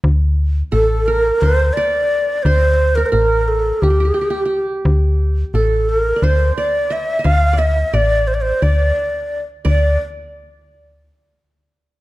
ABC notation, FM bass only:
X:1
M:7/8
L:1/8
Q:1/4=87
K:none
V:1 name="FM bass" clef=bass
D,,2 A,,,2 D,, z2 | D,,2 A,,,2 D,, z2 | D,,2 A,,,2 D,, z2 | D,,2 A,,,2 D,, z2 |
D,, z6 |]